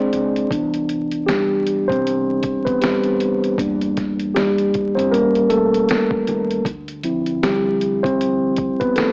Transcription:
Already playing: G#3 C4 D4 G#4 C5 D5
0.13 C#2, closed hi-hat
0.36 closed hi-hat
0.50 C2 E3 B3 D4, kick, closed hi-hat
0.74 closed hi-hat
0.89 closed hi-hat
1.11 closed hi-hat
1.26 G3 G4, snare, closed hi-hat
1.67 closed hi-hat
1.88 C2 C4 C5, kick
1.92 closed hi-hat
2.06 closed hi-hat
2.42 kick, closed hi-hat
2.65 B3 B4, kick, closed hi-hat
2.81 G3 G4, snare, closed hi-hat
3.04 closed hi-hat
3.20 closed hi-hat
3.44 closed hi-hat
3.58 E2 G3 A#3 D4, kick, closed hi-hat
3.81 closed hi-hat
3.97 kick, snare, closed hi-hat
4.19 closed hi-hat
4.34 G3 G4, snare, closed hi-hat
4.58 closed hi-hat
4.74 kick, closed hi-hat
4.95 E2 C4 C5, closed hi-hat
5.12 A1 G3 A#3 C#4 A#4, closed hi-hat
5.35 closed hi-hat
5.50 E1 A3 A4, closed hi-hat
5.74 closed hi-hat
5.89 snare, closed hi-hat
6.11 kick
6.27 D#2, closed hi-hat
6.51 closed hi-hat
6.65 D2, kick, closed hi-hat
6.88 closed hi-hat
7.04 F3 C4 E4, closed hi-hat
7.26 closed hi-hat
7.43 G3 G4, snare, closed hi-hat
7.81 closed hi-hat
8.03 D2 C4 C5, kick, closed hi-hat
8.21 closed hi-hat
8.57 kick, closed hi-hat
8.80 B3 B4, kick, closed hi-hat
8.96 A3 A4, snare, closed hi-hat

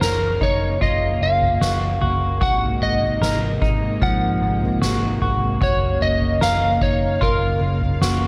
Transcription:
Already playing: C#3 A#3 F5
0.01 F#1 A#4, snare
0.41 F#1 D#4 C#5, kick
0.81 F#1 F4 D#5, kick, floor tom
1.22 F#1 F5
1.42 floor tom
1.61 F#1 F#4, snare
2.01 F#1 F#4, floor tom
2.41 G#1 C3 G#3 D#4 F#4 F#5, kick, floor tom
2.81 G#1 D#5
3.02 floor tom
3.21 G#1 A#4, snare
3.62 G#1 D#4, kick
4.02 G#1 F3 F#5, kick, floor tom
4.42 G#1
4.62 floor tom
4.82 G#1 F#4, snare
5.22 G#1 F#4, floor tom
5.61 F#1 C#3 F#4 C#5 F5, kick, floor tom
6.02 F#1 D#5
6.22 floor tom
6.41 F#1 A#4 F5, snare
6.82 F#1 D#4 C#5, kick
7.21 F#1 F4 A#4, kick, floor tom
7.61 F#1
7.81 floor tom
8.01 F#1 F#4, snare

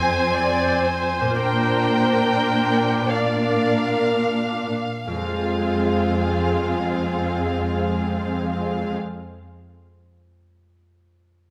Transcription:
Already playing: F2 G#3 C4 F4 C5 G#5
0.34 D5
0.87 C5
1.21 A#2
1.25 A#3
1.30 F4
1.35 D5
1.39 A#2 D4 A#4 G5
3.10 A#4 D5 F5
5.07 F2 G#3 C4 F4 G#4 F5
5.15 F3
5.22 G#3
5.28 F4
5.35 C5
5.43 F5

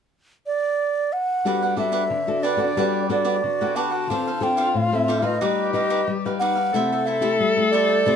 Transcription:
0.46 D5
1.13 F#5
1.45 G3 B3 D4 F#4 G4 A4 B4 F#5
1.62 G4 B4 F#5
1.76 B3 D4 F#4 G4 A4 B4 E5 F#5
1.92 D4 G4 B4 F#5
2.10 D3
2.27 B3 F#4 A4
2.43 D4 G4 B4 D5 F#5
2.57 B3 F#4 G4 A4 B4 F#5
2.77 G3 B3 D4 F#4 G4 A4 B4 F#5
3.09 B3 D4 F#4 G4 A4 B4 D5 F#5
3.25 D4 G4 B4 F#5
3.36 G4
3.43 D3 F#4
3.61 B3 F#4 G4 A4 B4 F#5
3.76 D4 G4 B4 F#5 A5
3.91 G4 B4 F#5
4.09 D3 C4 D4 F4 A4 C5 F5
4.27 A4 C5 F5
4.40 C4 D4 F4 A4 C5 F5 G5
4.57 D4 A4 C5 F5
4.74 A2 F5
4.92 C4 F4 A4 E5
5.08 D4 A4 C5 F5
5.22 D#4 F4 A4 B4 C5 D#5 F5
5.41 G3 D#4 G4 B4 F5
5.73 D#4 F4 G4 B4 D#5 F5
5.90 D#4 G4 B4 F5
6.08 G3
6.25 D#4 G4 B4 F5
6.39 D#4 G4 B4 F5 F#5
6.55 G4 B4 F5
6.73 C3 A3 E4 G4 A4 C5 E5
6.92 A4 C5 E5
7.06 E4 A4 C5 E5
7.21 A3 E4 G4 A4 C5 E5
7.40 G3
7.57 A3 E4 G4
7.72 E4 A4 C5 D5 E5
7.88 A4 C5 E5
8.06 C3 A3 E4 G4 A4 C5 E5

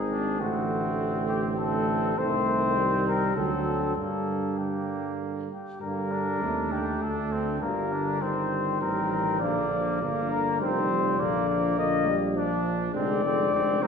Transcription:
Already playing: G#1 D#3 C4 G#4
0.10 D4
0.40 A1 D3 A3 C4 F#4
1.29 G4
1.58 D3 A3 C4 A4
2.17 C2 D#3 A3 C4 C5
2.77 G3
3.07 A#4
3.36 D2 D3 F#3 C4 A4
3.96 G2 D3 G3 A#3 A4
4.58 D3 G3 A#3 G4
5.51 G4
5.81 G2 D3 G3 A#3 A#4
6.12 D4
6.41 D#2 C3 A3
6.72 D3 G4
7.01 D2 D3 D4 A4
7.32 C4
7.61 G1 G3 A#3 A#4
7.92 D4
8.22 D#3 G3 C4 C5
8.81 A1 C4 A#4
9.11 A#4
9.40 A#1 D3 F3 A#3 D5
9.71 F3
10.01 G1 D3 A#3
10.31 A#4
10.61 F1 D#3 G3 C4 C5
10.91 F3
11.19 A#1 D3 F3 A#3 D5
11.50 A#3
11.78 D3 A#3 D#5
12.08 G3
12.37 F3 D4 D5
12.94 F1 D3 G#3 C4 D5
13.23 D3 G#3 C4
13.53 F1 D3 G#3 C4
13.82 D3 G#3 C4 A#4

